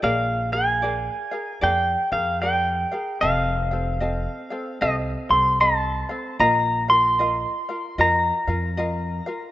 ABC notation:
X:1
M:4/4
L:1/8
Q:"Swing" 1/4=75
K:Bbmix
V:1 name="Pedal steel guitar"
f a3 g f g2 | f4 e c' =a2 | b c'3 b4 |]
V:2 name="Ukulele"
[ABdf] [ABf] [ABdf] [ABf] [ABdf] [ABf] [ABdf] [ABf] | [C=Aef] [CAf] [CAef] [CAf] [CAef] [CAf] [CAef] [CAf] | [FBef] [FBf] [FBef] [FBf] [FBef] [FBf] [FBef] [FBf] |]
V:3 name="Upright bass" clef=bass
B,,,4 F,, F,,3 | F,,,4 C,, C,,3 | B,,,4 F,, F,,3 |]